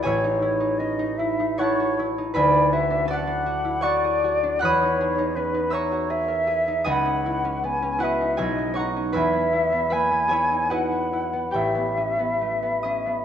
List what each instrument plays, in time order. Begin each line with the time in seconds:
Already playing: harp E4 A4 A5
0.03 harp A1 G#4 C#5 G#5, flute C#5
0.07 harp E5
0.24 harp D#4
0.42 harp E4
0.60 harp D#4
0.78 harp C#4, flute D#5
0.99 harp D#4
1.18 harp E4, flute E5
1.40 harp D#4
1.58 harp E4 C#5 F#5 A5 C#6, flute C#5
1.80 harp F#4
1.99 harp E4
2.18 harp D#4
2.34 harp D2 B4 E5 G#5 B5, flute D5
2.54 harp D4
2.73 harp F#4, flute E5
2.90 harp D4
3.05 harp C#4 A4 A5, flute F#5
3.10 harp D5 F#5
3.27 harp D4
3.46 harp F#4
3.65 harp E4
3.81 harp F#4 C#5 F#5 C#6, flute D5
3.85 harp A5
4.04 harp G#4
4.24 harp F#4
4.43 harp D4
4.59 harp E2 F#5 B5 F#6, flute C#5
4.65 harp D#6
4.82 harp D#4
5.01 harp G#4
5.18 harp D#4
5.36 harp C#4, flute B4
5.54 harp D#4
5.70 harp G#4 E5 A#5 C#6 E6, flute C#5
5.92 harp F#4
6.10 harp G#4, flute E5
6.28 harp A#4
6.47 harp G#4
6.68 harp D#4
6.84 harp C#2 D#5 G#5 B5 D#6, flute F#5
7.06 harp C#4
7.26 harp E4
7.45 harp C#4
7.64 harp B3, flute G#5
7.82 harp C#4
7.98 harp E4 F#4 B4 F#5
8.03 harp D#5, flute E5
8.21 harp D#4
8.37 harp B1 G#4 C#5 E5 G#5, flute D#5
8.58 harp C#4
8.74 harp D#4 C#5 F#5 C#6
8.79 harp A#5
8.96 harp C#4
9.12 harp E2 B4 E5 G#5 B5, flute E5
9.33 harp B3
9.53 harp E4
9.72 harp B3
9.90 harp A#3 B4 E5 G#5 B5, flute G#5
10.11 harp B3
10.28 harp E4 G#4 C#5 G#5
10.33 harp E5
10.52 harp D#4
10.70 harp E4 F#4 B4 D#5 F#5, flute F#5
10.91 harp F#4
11.13 harp E4
11.33 harp B3
11.51 harp A1 G4 C#5 G5, flute E5
11.56 harp E5
11.75 harp B3
11.97 harp C#4
12.19 harp B3
12.41 harp A3
12.63 harp B3
12.83 harp C#4 D#5 D#6
13.06 harp B3